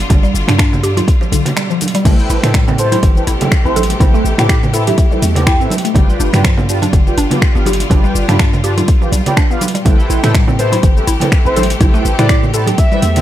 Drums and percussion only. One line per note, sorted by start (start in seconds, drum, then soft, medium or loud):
0.10 kick loud
0.10 closed hi-hat medium
0.10 high conga loud
0.10 low conga loud
0.10 shaker medium
0.24 shaker soft
0.35 shaker medium
0.48 finger snap medium
0.48 closed hi-hat soft
0.48 muted conga medium
0.48 high conga medium
0.48 low conga medium
0.48 shaker soft
0.59 finger snap loud
0.59 kick loud
0.59 closed hi-hat medium
0.59 shaker medium
0.73 low conga loud
0.73 shaker soft
0.84 closed hi-hat soft
0.84 shaker medium
0.97 closed hi-hat soft
0.97 high conga medium
0.97 shaker soft
1.08 kick loud
1.08 closed hi-hat medium
1.08 shaker medium
1.21 muted conga medium
1.21 shaker soft
1.32 closed hi-hat medium
1.32 high conga medium
1.32 shaker medium
1.45 closed hi-hat soft
1.45 low conga loud
1.45 shaker soft
1.56 finger snap loud
1.56 muted conga soft
1.56 shaker soft
1.71 shaker soft
1.81 closed hi-hat soft
1.81 high conga loud
1.81 shaker medium
1.88 closed hi-hat medium
1.94 closed hi-hat medium
1.94 muted conga medium
1.94 shaker soft
2.05 kick loud
2.05 closed hi-hat medium
2.05 crash medium
2.05 high conga loud
2.05 low conga loud
2.05 shaker medium
2.19 shaker soft
2.30 shaker medium
2.44 finger snap medium
2.44 closed hi-hat soft
2.44 muted conga medium
2.44 high conga medium
2.44 low conga medium
2.44 shaker soft
2.54 finger snap loud
2.54 kick loud
2.54 closed hi-hat medium
2.54 shaker medium
2.68 low conga loud
2.68 shaker soft
2.78 closed hi-hat soft
2.78 muted conga soft
2.78 shaker medium
2.92 closed hi-hat soft
2.92 high conga loud
2.92 shaker soft
3.03 kick loud
3.03 closed hi-hat medium
3.03 shaker medium
3.15 muted conga medium
3.15 shaker soft
3.27 closed hi-hat medium
3.27 shaker medium
3.41 closed hi-hat soft
3.41 high conga medium
3.41 low conga loud
3.41 shaker soft
3.52 finger snap loud
3.52 kick loud
3.52 muted conga soft
3.52 shaker soft
3.66 shaker soft
3.76 closed hi-hat soft
3.76 high conga loud
3.76 shaker loud
3.83 closed hi-hat medium
3.90 closed hi-hat medium
3.90 muted conga medium
3.90 shaker soft
4.00 kick loud
4.00 closed hi-hat medium
4.00 high conga loud
4.00 low conga loud
4.00 shaker medium
4.15 shaker soft
4.25 shaker loud
4.38 finger snap medium
4.38 closed hi-hat soft
4.38 muted conga medium
4.38 high conga loud
4.38 low conga medium
4.38 shaker soft
4.49 finger snap loud
4.49 kick loud
4.49 closed hi-hat medium
4.49 shaker medium
4.63 low conga loud
4.63 shaker soft
4.74 closed hi-hat soft
4.74 shaker medium
4.87 closed hi-hat soft
4.87 high conga loud
4.87 shaker soft
4.98 kick loud
4.98 closed hi-hat medium
4.98 shaker medium
5.12 muted conga medium
5.12 shaker soft
5.22 closed hi-hat medium
5.22 high conga medium
5.22 shaker loud
5.35 closed hi-hat soft
5.35 low conga loud
5.35 shaker soft
5.47 finger snap loud
5.47 kick loud
5.47 shaker medium
5.61 shaker soft
5.70 closed hi-hat soft
5.70 high conga loud
5.70 shaker loud
5.78 closed hi-hat medium
5.84 closed hi-hat soft
5.84 muted conga soft
5.84 shaker soft
5.94 kick loud
5.94 closed hi-hat medium
5.94 high conga loud
5.94 low conga loud
5.94 shaker medium
6.10 shaker soft
6.20 shaker loud
6.33 finger snap medium
6.33 closed hi-hat soft
6.33 muted conga medium
6.33 high conga loud
6.33 low conga medium
6.33 shaker soft
6.44 finger snap loud
6.44 kick loud
6.44 closed hi-hat medium
6.44 shaker medium
6.57 low conga loud
6.57 shaker soft
6.69 closed hi-hat soft
6.69 muted conga soft
6.69 shaker loud
6.82 closed hi-hat soft
6.82 high conga loud
6.82 shaker soft
6.93 kick loud
6.93 closed hi-hat medium
6.93 shaker medium
7.07 muted conga medium
7.07 shaker soft
7.18 closed hi-hat medium
7.18 shaker loud
7.31 closed hi-hat soft
7.31 high conga loud
7.31 low conga loud
7.31 shaker soft
7.42 finger snap loud
7.42 kick loud
7.42 shaker medium
7.56 shaker soft
7.66 closed hi-hat soft
7.66 high conga loud
7.66 shaker loud
7.73 closed hi-hat medium
7.80 closed hi-hat soft
7.80 muted conga soft
7.80 shaker soft
7.90 kick loud
7.90 closed hi-hat medium
7.90 high conga loud
7.90 low conga loud
7.90 shaker medium
8.05 shaker soft
8.16 shaker loud
8.29 finger snap medium
8.29 closed hi-hat soft
8.29 muted conga medium
8.29 high conga loud
8.29 low conga loud
8.29 shaker soft
8.39 finger snap loud
8.39 kick loud
8.39 closed hi-hat medium
8.39 shaker medium
8.53 low conga loud
8.53 shaker soft
8.64 closed hi-hat soft
8.64 shaker medium
8.78 closed hi-hat soft
8.78 high conga loud
8.78 shaker soft
8.88 kick loud
8.88 closed hi-hat medium
8.88 shaker medium
9.02 muted conga soft
9.02 shaker soft
9.12 closed hi-hat medium
9.12 high conga medium
9.12 shaker loud
9.26 closed hi-hat soft
9.26 low conga loud
9.26 shaker soft
9.37 finger snap loud
9.37 kick loud
9.37 shaker medium
9.51 shaker soft
9.61 closed hi-hat soft
9.61 high conga loud
9.61 shaker loud
9.68 closed hi-hat soft
9.74 closed hi-hat soft
9.74 muted conga soft
9.74 shaker soft
9.85 kick loud
9.85 closed hi-hat medium
9.85 high conga loud
9.85 low conga loud
9.85 shaker medium
10.00 shaker soft
10.10 shaker loud
10.23 finger snap medium
10.23 closed hi-hat soft
10.23 muted conga medium
10.23 high conga medium
10.23 low conga medium
10.23 shaker soft
10.34 finger snap loud
10.34 kick loud
10.34 closed hi-hat medium
10.34 shaker medium
10.47 low conga loud
10.47 shaker soft
10.59 closed hi-hat soft
10.59 muted conga soft
10.59 shaker medium
10.72 closed hi-hat soft
10.72 high conga loud
10.72 shaker soft
10.83 kick loud
10.83 closed hi-hat medium
10.83 shaker medium
10.97 muted conga medium
10.97 shaker soft
11.07 closed hi-hat medium
11.07 shaker medium
11.20 closed hi-hat soft
11.20 high conga medium
11.20 low conga loud
11.20 shaker soft
11.32 finger snap loud
11.32 kick loud
11.32 shaker medium
11.46 shaker soft
11.56 closed hi-hat soft
11.56 high conga loud
11.56 shaker medium
11.63 closed hi-hat medium
11.70 closed hi-hat soft
11.70 muted conga soft
11.70 shaker soft
11.81 kick loud
11.81 closed hi-hat medium
11.81 high conga loud
11.81 low conga medium
11.81 shaker medium
11.95 shaker soft
12.05 shaker medium
12.19 finger snap medium
12.19 closed hi-hat soft
12.19 muted conga medium
12.19 high conga medium
12.19 low conga loud
12.19 shaker soft
12.29 finger snap loud
12.29 kick loud
12.29 closed hi-hat medium
12.29 shaker medium
12.43 low conga medium
12.43 shaker soft
12.54 closed hi-hat soft
12.54 shaker medium
12.67 closed hi-hat soft
12.67 high conga loud
12.67 shaker soft
12.78 kick loud
12.78 closed hi-hat medium
12.78 shaker medium
12.92 muted conga medium
12.92 shaker soft
13.02 closed hi-hat medium
13.02 high conga medium
13.02 shaker medium
13.16 closed hi-hat soft
13.16 low conga loud
13.16 shaker soft